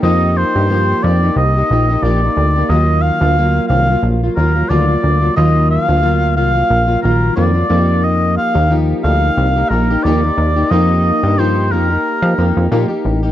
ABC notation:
X:1
M:4/4
L:1/16
Q:"Swing 16ths" 1/4=90
K:Fmix
V:1 name="Oboe"
e2 c4 d2 e4 d4 | e2 f4 f2 z2 B2 d4 | e2 f4 f4 B2 d4 | e2 f2 z2 f4 B2 d4 |
e4 c2 B6 z4 |]
V:2 name="Steel-string acoustic guitar"
[F,B,EG]3 [B,EG] [F,B,EG]2 [F,B,EG] [B,EG]2 [B,EG] [F,B,EG] [B,EG] [F,B,EG] [B,EG]2 [B,EG] | [E,_G,B,F]3 [G,B,F] [G,B,F]2 [E,G,B,F] [G,B,F]2 [G,B,F] [E,G,B,F] [G,B,F] [E,G,B,F] [G,B,F]2 [G,B,F] | [E,_G,B,F]3 [G,B,F] [G,B,F]2 [E,G,B,F] [G,B,F]2 [G,B,F] [E,G,B,F]2 [E,G,B,F] [G,B,F] [F,B,E=G]2- | [F,B,EG]3 [B,EG] [F,B,EG]2 [F,B,EG]3 [B,EG] [F,B,EG] [B,EG] [F,B,EG] [B,EG]2 [B,EG] |
[F,B,EG]3 [B,EG] [F,B,EG]2 [F,B,EG] [B,EG]2 [B,EG] [F,B,EG]2 [F,B,EG] [B,EG]2 [B,EG] |]
V:3 name="Analog synth bass" clef=bass
F,,3 G,,3 F,,2 C,,2 B,,,2 B,,,2 D,,2 | E,,3 D,,3 C,,2 B,,,2 E,,2 D,,2 D,,2 | E,,3 D,,3 C,,2 B,,,2 B,,,2 F,,2 F,,2- | F,,3 E,,3 D,,2 C,,2 B,,,2 E,,2 E,,2 |
F,,3 G,,3 F,,2 z F, F,, F,, B,, z A,,,2 |]